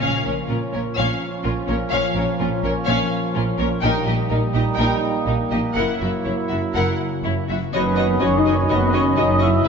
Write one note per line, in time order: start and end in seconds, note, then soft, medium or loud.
0.00 0.09 A#1 soft
0.00 0.09 A#2 soft
0.00 1.93 A#2 soft
0.00 3.78 F3 soft
0.00 3.78 A#3 soft
0.00 3.20 C#4 soft
0.00 0.24 C#4 soft
0.00 3.79 C#4 soft
0.00 0.33 F4 soft
0.00 0.24 C#5 soft
0.00 0.24 F5 soft
0.18 0.81 A#3 soft
0.24 0.34 A#1 soft
0.24 0.34 A#2 soft
0.24 0.34 C#4 soft
0.24 0.32 A#4 soft
0.24 0.33 C#5 soft
0.34 0.66 F4 soft
0.48 0.57 A#1 soft
0.48 0.58 A#2 soft
0.48 0.58 C#4 soft
0.48 0.56 F4 soft
0.48 0.57 A#4 soft
0.48 1.45 C#5 soft
0.67 1.29 F4 soft
0.73 0.82 A#1 soft
0.73 0.82 A#2 soft
0.73 0.81 C#4 soft
0.73 0.81 A#4 soft
0.73 0.81 C#5 soft
0.82 1.13 A#3 soft
0.96 1.05 A#1 soft
0.96 1.06 A#2 soft
0.96 2.08 F3 soft
0.96 1.19 C#4 soft
0.96 1.20 C#5 soft
0.96 1.19 F5 soft
1.14 1.76 A#3 soft
1.30 1.61 F4 soft
1.44 1.52 A#1 soft
1.44 1.54 A#2 soft
1.44 1.52 C#4 soft
1.44 1.52 F4 soft
1.44 1.52 A#4 soft
1.44 2.38 C#5 soft
1.62 2.24 F4 soft
1.68 1.76 A#1 soft
1.68 1.77 A#2 soft
1.68 1.76 C#4 soft
1.68 1.77 A#4 soft
1.68 1.76 C#5 soft
1.78 2.71 A#3 soft
1.91 2.00 A#1 soft
1.91 2.01 A#2 soft
1.91 3.81 A#2 soft
1.91 2.14 C#4 soft
1.91 2.15 C#5 soft
1.91 2.14 F5 soft
2.10 2.86 F3 soft
2.15 2.23 A#1 soft
2.15 2.24 A#2 soft
2.15 2.25 C#4 soft
2.15 2.24 A#4 soft
2.15 2.25 C#5 soft
2.25 2.55 F4 soft
2.39 2.48 A#1 soft
2.39 2.49 A#2 soft
2.39 2.49 C#4 soft
2.39 2.48 F4 soft
2.39 2.47 A#4 soft
2.39 3.33 C#5 soft
2.56 3.18 F4 soft
2.64 2.72 A#1 soft
2.64 2.72 A#2 soft
2.64 2.72 C#4 soft
2.64 2.72 A#4 soft
2.64 2.72 C#5 soft
2.72 3.02 A#3 soft
2.86 2.95 A#1 medium
2.86 2.96 A#2 medium
2.86 3.85 F3 soft
2.86 3.10 C#4 medium
2.86 3.09 C#5 medium
2.86 3.09 F5 soft
3.03 3.66 A#3 soft
3.19 3.49 F4 soft
3.34 3.43 A#1 soft
3.34 3.44 A#2 soft
3.34 3.42 C#4 soft
3.34 3.44 F4 soft
3.34 3.43 A#4 soft
3.34 3.84 C#5 soft
3.50 3.84 F4 soft
3.59 3.67 A#1 soft
3.59 3.67 A#2 soft
3.59 3.67 C#4 soft
3.59 3.67 A#4 medium
3.59 3.67 C#5 soft
3.67 3.97 A#3 soft
3.81 3.91 A#1 medium
3.81 5.77 A#2 soft
3.81 3.92 A#2 soft
3.81 5.71 G3 medium
3.81 7.45 A#3 medium
3.81 5.71 D#4 medium
3.81 4.05 D#4 soft
3.81 4.05 A#4 medium
3.81 4.04 G5 medium
3.98 4.61 A#3 soft
4.06 4.14 A#1 soft
4.06 4.16 A#2 soft
4.06 4.15 D#4 soft
4.06 4.16 G4 soft
4.06 4.14 D#5 soft
4.14 4.45 G4 soft
4.30 4.38 A#1 soft
4.30 4.39 A#2 soft
4.30 4.39 D#4 soft
4.30 4.38 A#4 soft
4.30 5.27 D#5 soft
4.46 5.10 G4 soft
4.54 4.62 A#1 soft
4.54 4.63 A#2 soft
4.54 4.62 D#4 soft
4.54 4.62 G4 soft
4.54 4.62 D#5 soft
4.62 4.93 A#3 soft
4.77 4.86 A#1 medium
4.77 4.87 A#2 medium
4.77 5.00 D#4 medium
4.77 5.00 A#4 soft
4.77 5.00 G5 soft
4.94 5.60 A#3 soft
5.12 5.43 G4 soft
5.26 5.34 A#1 soft
5.26 5.35 A#2 soft
5.26 5.35 D#4 soft
5.26 5.34 A#4 soft
5.26 5.79 D#5 soft
5.44 5.78 G4 soft
5.50 5.59 A#1 soft
5.50 5.60 A#2 soft
5.50 5.59 D#4 soft
5.50 5.60 G4 soft
5.50 5.58 D#5 soft
5.61 5.93 A#3 soft
5.75 5.84 F#1 soft
5.75 5.84 F#2 soft
5.75 7.74 F#2 soft
5.75 7.45 F#3 soft
5.75 7.45 E4 soft
5.75 5.99 E4 soft
5.75 5.99 A#4 soft
5.75 5.98 F#5 soft
5.94 6.59 A#3 soft
6.00 6.09 F#1 soft
6.00 6.10 F#2 soft
6.00 6.10 E4 soft
6.00 6.09 F#4 soft
6.00 6.08 E5 soft
6.11 6.43 F#4 soft
6.24 6.34 F#1 soft
6.24 6.35 F#2 soft
6.24 6.33 E4 soft
6.24 6.34 E4 soft
6.24 6.32 C#5 soft
6.24 7.25 E5 soft
6.44 7.09 F#4 soft
6.49 6.59 F#1 soft
6.49 6.60 F#2 soft
6.49 6.59 E4 soft
6.49 6.58 F#4 soft
6.49 6.57 E5 soft
6.60 6.92 A#3 soft
6.74 6.83 F#1 soft
6.74 6.84 F#2 soft
6.74 7.76 C#3 soft
6.74 6.99 E4 soft
6.74 6.97 A#4 soft
6.74 6.98 F#5 soft
6.93 7.58 A#3 soft
7.10 7.42 F#4 soft
7.24 7.32 F#1 soft
7.24 7.33 F#2 soft
7.24 7.32 E4 soft
7.24 7.34 E4 soft
7.24 7.32 C#5 soft
7.24 7.77 E5 soft
7.43 9.68 F#4 soft
7.49 7.57 F#1 soft
7.49 7.57 F#2 soft
7.49 7.58 E4 soft
7.49 7.57 F#4 soft
7.49 7.57 E5 soft
7.59 7.77 A#3 soft
7.73 8.16 F#1 medium
7.73 8.16 F#2 medium
7.73 9.64 F#2 medium
7.73 9.61 D#3 medium
7.73 8.20 B3 medium
7.73 9.61 C#4 medium
7.73 7.82 F#4 soft
7.73 9.62 F#4 medium
7.73 8.18 B4 medium
7.73 7.82 C#5 soft
7.73 7.81 D#5 medium
7.73 9.62 D#5 medium
7.73 9.68 B5 medium
7.91 8.85 B3 soft
7.97 8.07 F#4 soft
7.97 8.06 C#5 soft
7.97 8.05 D#5 soft
8.07 9.00 C#5 soft
8.20 8.64 F#1 medium
8.20 8.64 F#2 medium
8.20 8.38 C#4 medium
8.20 8.30 F#4 soft
8.20 8.52 B4 soft
8.20 8.28 C#5 soft
8.20 8.38 C#5 medium
8.20 8.28 D#5 soft
8.37 8.54 D#4 medium
8.37 8.54 D#5 medium
8.37 9.33 D#5 soft
8.45 8.54 F#4 soft
8.45 8.54 C#5 soft
8.45 8.53 D#5 soft
8.53 8.63 C#4 medium
8.53 9.16 B4 soft
8.53 8.70 C#5 medium
8.68 9.12 F#1 medium
8.68 9.12 F#2 medium
8.68 9.67 C#3 soft
8.68 8.94 B3 medium
8.68 8.78 F#4 soft
8.68 8.93 B4 medium
8.68 8.77 C#5 soft
8.68 8.77 D#5 soft
8.93 9.17 C#4 medium
8.93 9.01 F#4 soft
8.93 9.04 C#5 medium
8.93 9.01 C#5 soft
8.93 9.01 D#5 soft
9.02 9.67 C#5 soft
9.16 9.60 F#1 medium
9.16 9.60 F#2 medium
9.16 9.41 D#4 medium
9.16 9.25 F#4 soft
9.16 9.47 B4 soft
9.16 9.24 C#5 soft
9.16 9.25 D#5 medium
9.16 9.41 D#5 medium
9.34 9.68 D#5 soft
9.39 9.68 E4 medium
9.39 9.49 F#4 soft
9.39 9.49 C#5 soft
9.39 9.47 D#5 soft
9.39 9.68 E5 medium
9.49 9.68 B4 soft
9.64 9.68 F#2 medium
9.64 9.68 E3 medium
9.64 9.68 G#3 medium
9.64 9.68 G#4 medium
9.64 9.68 E5 soft